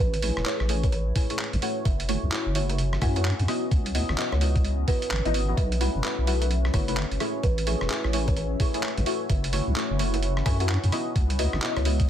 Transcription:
Already playing: C#4 E5
0.00 A1 B4
0.14 closed hi-hat
0.22 A3 E4 G#4 C#5, open hi-hat
0.32 F#4
0.37 E1, cross-stick
0.46 A3 E4 G#4 C#5, clap
0.57 A1 B4, cross-stick
0.69 A3 E4 G#4 C#5, open hi-hat
0.83 C#5, kick, closed hi-hat
0.92 C#5, closed hi-hat
1.16 A3 E4 G#4 C#5, kick, open hi-hat
1.30 A3 E4 G#4 C#5, closed hi-hat
1.39 clap
1.53 A1, closed hi-hat
1.62 A3 E4 F#4 C#5, open hi-hat
1.85 F#1 E5, kick, closed hi-hat
2.00 closed hi-hat
2.09 A3 E4 F#4 C#5, open hi-hat
2.23 C#2
2.32 A3 E4 F#4 C#5, clap
2.46 F#1
2.55 A3 E4 F#4 C#5, open hi-hat
2.69 E5, closed hi-hat
2.78 closed hi-hat
2.93 cross-stick
3.02 F#2 A3 E4 F#4 C#5 G#5, kick, cross-stick, open hi-hat
3.16 A3 E4 F#4 C#5 F#5, closed hi-hat
3.25 F#5, clap
3.39 F#2, closed hi-hat
3.48 B3 E4 F#4 D#5, cross-stick, open hi-hat
3.71 C#2 D#5, kick, closed hi-hat
3.86 closed hi-hat
3.95 B3 E4 F#4 D#5, open hi-hat
4.09 G#1, cross-stick
4.18 B3 E4 F#4 D#5, clap
4.32 C#2 C#5, cross-stick
4.41 B3 E4 F#4 C#5 D#5, open hi-hat
4.56 kick, closed hi-hat
4.65 closed hi-hat
4.88 B3 E4 F#4 B4 D#5, kick, open hi-hat
5.02 closed hi-hat
5.11 G#1, clap
5.25 G#1 B3 E4 F#4 D#5, closed hi-hat
5.34 open hi-hat
5.48 B3 E4 F#4 D#5
5.57 B1 E5, kick, closed hi-hat
5.72 closed hi-hat
5.81 A3 E4 F#4 B4, open hi-hat
5.95 F#1
6.04 A3 E4 F#4 B4, clap
6.18 B1
6.27 A3 E4 F#4 B4, open hi-hat
6.31 E5
6.42 E5, closed hi-hat
6.51 closed hi-hat
6.65 cross-stick
6.74 F#1 A3 E4 F#4 B4 C#5, kick, cross-stick, open hi-hat
6.88 A3 E4 F#4 B4 C#5, closed hi-hat
6.97 clap
7.11 F#1, closed hi-hat
7.20 A3 E4 G#4 C#5, cross-stick, open hi-hat
7.43 A1 B4, kick, closed hi-hat
7.58 closed hi-hat
7.67 A3 E4 G#4 C#5, open hi-hat
7.81 E1, cross-stick
7.90 A3 E4 G#4 C#5, clap
8.04 A1, cross-stick
8.13 A3 E4 G#4 C#5, open hi-hat
8.28 C#5, kick, closed hi-hat
8.37 C#5, closed hi-hat
8.60 A3 E4 G#4 C#5, kick, open hi-hat
8.74 A3 E4 G#4 C#5, closed hi-hat
8.83 clap
8.97 A1, closed hi-hat
9.06 A3 E4 F#4 C#5, open hi-hat
9.30 F#1 E5, kick, closed hi-hat
9.44 closed hi-hat
9.53 A3 E4 F#4 C#5, open hi-hat
9.67 C#2
9.76 A3 E4 F#4 C#5, clap
9.90 F#1
9.99 A3 E4 F#4 C#5, open hi-hat
10.14 E5, closed hi-hat
10.23 closed hi-hat
10.37 cross-stick
10.46 F#2 A3 E4 F#4 C#5 G#5, kick, cross-stick, open hi-hat
10.60 A3 E4 F#4 C#5 F#5, closed hi-hat
10.69 F#5, clap
10.83 F#2, closed hi-hat
10.92 B3 E4 F#4 D#5, cross-stick, open hi-hat
11.16 C#2, kick, closed hi-hat
11.30 closed hi-hat
11.39 B3 E4 F#4 D#5, open hi-hat
11.53 G#1, cross-stick
11.62 B3 E4 F#4 D#5, clap
11.76 C#2 C#5, cross-stick, closed hi-hat
11.85 B3 E4 F#4 C#5 D#5, open hi-hat
12.00 kick, closed hi-hat

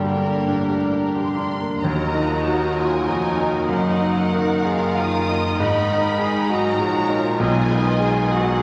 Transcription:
Already playing: G1 G2 G3 A#3 G4 A#4 D5
0.05 D3
0.25 A#3
0.47 A1 A2 D4
0.69 G4
0.94 D4
1.16 F1 F2 G4 C6
1.38 D4
1.61 A#3
1.81 D#2 F#3 A#3 D#4 F#4 A#4 D#5 A#5
2.15 F3 D#4
2.45 D#3 F#4 A#4
2.77 F#3 F4 G#5
3.07 F1 F2 F3 D#4 F#4
3.38 D#3 D#4
3.68 F#1 F#2 D#3 D#4 A#4 D#5 F#5
4.00 F#3 D#4
4.30 D#3 D#4 A#4 F#5
4.63 F4 G#4 F5
4.97 D#3 A#4 F5 D#6
5.28 D#4 D#5
5.58 G#1 G#2 D#3 G#3 D#4 D#5 B5
5.92 D#4
6.18 G#3 D#4 G#4 D#5
6.49 F#3 F#4 A#5
6.79 A#1 A#2 F3 F#4 G#4 C#5
7.09 D#4 F4
7.39 B1 B2 D#3 D#4 G#4 D#5 G#5
7.71 D#4 B4
8.00 D#3 G#4
8.29 F#3 F#4 F#5

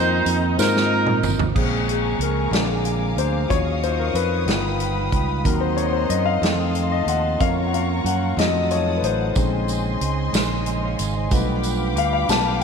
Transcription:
Already playing: F2 D#3 A#3 C4 D#4 F4 A#4 C5
0.26 F2, closed hi-hat
0.58 G#2 C4 D#4 F4 A#4 C5, snare, tambourine
0.77 snare
1.07 mid tom
1.23 G#1, mid tom, tambourine
1.39 floor tom
1.55 A#1 C#3 F3 G#3 A#3 C4 G#4 F5 G#5 A#5 C#6, kick, crash
1.89 G#4, closed hi-hat
2.19 C#2 A#4, closed hi-hat
2.51 A#1 D3 F3 G#3 A#3 C4 D4 G#4 D6, snare, closed hi-hat
2.85 closed hi-hat
3.17 D2 C5, closed hi-hat
3.49 D#2 D#3 F3 F#3 C#4 D#4 F4 C#5 D#5 C#6 D#6, kick, closed hi-hat
3.83 C5, closed hi-hat
3.99 A#4
4.14 F2 B4, closed hi-hat
4.46 G1 D#3 F3 G3 B3 D#4 F4 B4 G5 B5, snare, closed hi-hat
4.80 closed hi-hat
5.12 C#2, kick, closed hi-hat
5.44 D#2 D#3 F#3 A#3 C4 D#4 A#4 D#5 F#5 A#5 C6, kick, closed hi-hat
5.61 C5
5.77 C#5, closed hi-hat
5.93 C5
6.09 F#2 D#5, closed hi-hat
6.25 F5
6.41 F2 D#3 F3 A3 C4 D#4 F4 A4 A5 C6, snare, closed hi-hat
6.75 closed hi-hat
6.92 D#5
7.06 D#2 F#5, closed hi-hat
7.40 F2 F3 A#3 C#4 A#4 C#5 F5 A#5 C#6, kick, closed hi-hat
7.67 F#5
7.74 F5, closed hi-hat
8.04 F#2 F#5, closed hi-hat
8.37 F2 F#3 A3 D#4 F4 G#4 D#5 F#5 A5 D#6, snare, closed hi-hat
8.47 A4
8.71 C#5, closed hi-hat
8.97 B4
9.02 A1 C5, closed hi-hat
9.35 A#1 G#3 C4 C#4 D#4 D#5 G#5 C6, kick, closed hi-hat, tambourine
9.40 C#3 C5
9.68 closed hi-hat, tambourine
10.01 C#2, closed hi-hat
10.33 A#1, snare, closed hi-hat, tambourine
10.66 C5 D#5, closed hi-hat
10.85 C#5 F5
10.99 G#1 F5 G#5, closed hi-hat, tambourine
11.16 C5 D#5
11.31 B1 F3 G3 A3 B3 D4 F4 B4 F5 G5 B5 D6, kick, closed hi-hat, tambourine
11.63 closed hi-hat, tambourine
11.96 D2 F5, closed hi-hat
12.13 F5
12.28 B1 F3 A3 B3 A5, snare, closed hi-hat, tambourine

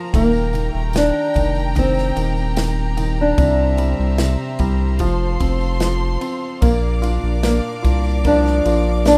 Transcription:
Already playing: F3 F4 A#4 C5 A#5
0.13 D#1 D#3 A#3 G4 G5, kick, ride, tambourine
0.33 tambourine
0.53 D#3, ride, tambourine
0.72 D#1 A3
0.93 D#3, snare, ride, tambourine
0.98 D4
1.34 F1 D#3, kick, ride, tambourine
1.55 tambourine
1.75 D#3 C4, kick, ride, tambourine
1.95 snare, tambourine
2.16 D#1 D#3, ride, tambourine
2.37 tambourine
2.56 D#3, snare, ride, tambourine
2.97 D#3, ride, tambourine
3.21 D4
3.37 C2 C3 C5 E5, kick, ride, tambourine
3.77 G3, ride, tambourine
3.99 C2
4.18 C3, snare, ride, tambourine
4.59 C2 G3, kick, ride, tambourine
4.99 F1 F3 A4 F5 C6, kick, ride, tambourine
5.40 F1 C4, kick, ride, tambourine
5.61 tambourine
5.80 F3, snare, ride, tambourine
6.21 C4, ride, tambourine
6.61 A#1 A#2 A#3 A#4 D5 D6, kick, ride, tambourine
7.02 D4 F4, ride, tambourine
7.23 A#1
7.42 A#3, snare, ride, tambourine
7.82 C2 D4 F4, kick, ride, tambourine
8.05 tambourine
8.24 F3 A#3 D4, kick, ride, tambourine
8.44 snare, tambourine
8.65 A#1 F4 A#4, ride, tambourine
9.05 A#3 D4, snare, ride, tambourine

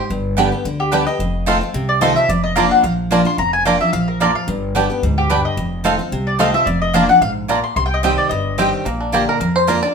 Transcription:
Already playing: G4 C5
0.10 G1 G2
0.37 D3 G3 B3 D4 G4 D5 G5
0.52 B3 G4
0.65 D2 D3
0.80 G4
0.92 D3 G3 B3 D4 G4 B4 D5 G5
1.07 B3 G4 D#5
1.19 F1 F2
1.46 D#3 A3 C4 D#4 F4 A4 F5 C6
1.61 C4 F4
1.74 C2 C3
1.89 D5
2.01 D#3 A3 C4 D#4 F4 A4 D#5 F5 C6
2.16 C4 F4 E5
2.29 F1 F2 D5
2.44 D#5
2.56 F3 A#3 D4 F4 A#4 D5 F5 A#5
2.71 F#5
2.83 A#1 F3 F5
3.11 F3 A#3 D4 F4 A#4 D5 A#5
3.25 D4 F4 C6
3.38 F1 F2 A#5
3.53 G#5
3.65 F3 A#3 D4 F4 A#4 D5 G5 A#5
3.81 D4 F4 E5
3.93 A#1 F3 F5
4.08 A#4
4.20 F2 A#3 D4 F4 A#4 D5 A#5
4.35 F5
4.47 G1 G2
4.75 D3 G3 B3 D4 G4 D5 G5
4.90 B3 G4
5.02 D2 G#2
5.18 G4
5.30 G2 B3 D4 G4 B4 D5 G5
5.45 D#5
5.57 F1 F2
5.84 D#3 A3 C4 D#4 F4 A4 F5 C6
5.99 C4 F4
6.12 C2 C3
6.27 D5
6.39 D#3 A3 C4 D#4 F4 A4 D#5 F5 C6
6.54 C4 F4 E5
6.66 F1 F2 D5
6.82 D#5
6.94 F3 A#3 D4 F4 A#4 D5 F5 A#5
7.09 D4 F4 F#5
7.21 A#1 G#2 F5
7.48 A#2 A#3 D4 F4 A#4 D5 A#5
7.64 C6
7.76 C2 C3 C6
7.86 G5
7.94 D#5
8.03 D#3 G3 C4 G4 C5 D#5 G5
8.18 D5
8.29 G1 G2 D#5
8.58 D#3 G3 C4 G4 D#5 G5
8.85 A#1 A#2 A#3
9.01 D4
9.12 D3 A#3 D4 F4 G4 D5 A#5
9.29 A#4
9.40 F2 A#4
9.56 C5
9.67 D3 A#3 D4 F4 A#4 D5 A#5
9.83 D4 F4 D5

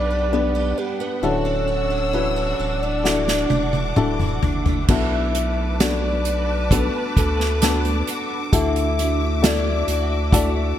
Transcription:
Already playing: B1 G3 B3 D4 G4 B4 D5 F#5
0.11 D4
0.32 B3 D4 G4 B4
0.55 G4
0.78 D4 G4
1.00 B3 B4
1.22 D1 D3 D4 E4 F#4 A4 C#5 E6
1.45 D4
1.68 F#4
1.90 D4
2.13 E3 D4 E4 F#4 B4
2.36 F#4
2.59 D1 D4
2.82 A3 D5
3.04 D3 D4 E4 F#4 A4 D6, snare
3.28 D4, snare
3.50 E1 F#4, high tom
3.73 D4, high tom
3.96 D1 E3 D4 E4 F#4 A4, mid tom
4.20 F#4, mid tom
4.43 F#1 D4, floor tom
4.66 A3, floor tom
4.88 B1 B2 B3 D4 F#4 A4 B4 E5 A5 D6, kick, crash
5.35 A3, closed hi-hat
5.80 B3 D4 F#4 A4 D5, snare, closed hi-hat
6.25 F#4, closed hi-hat
6.71 A3 B3 D4 F#4 A4 B4, kick, closed hi-hat
7.17 D2 F#4 A4, kick, closed hi-hat
7.40 snare
7.62 B3 D4 F#4 A4, snare, closed hi-hat
7.85 closed hi-hat
8.07 F#4, closed hi-hat
8.52 D2 D3 D4 E4 F#4 A4 E5, kick, closed hi-hat
8.76 closed hi-hat
8.99 A3, closed hi-hat
9.42 D4 E4 F#4 A4 D5, snare, closed hi-hat
9.88 D2 F#4, closed hi-hat
10.32 A3 D4 E4 F#4 A4 D5, kick, closed hi-hat

